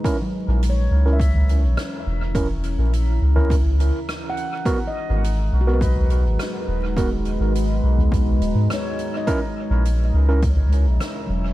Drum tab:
HH |x---x---x-x-x---|x-x-x---x-x-x-x-|x---x---x-x-x---|x-x-x---x-x-x-x-|
SD |------------r---|------------r---|------------r---|------------r---|
T2 |---------o------|-------o--------|---------o------|-------o--------|
BD |o-------o-------|o-------o-------|o-------o-------|o-------o-------|

HH |x---x---x-x-x---|
SD |------------r---|
T2 |---------o------|
BD |o-------o-------|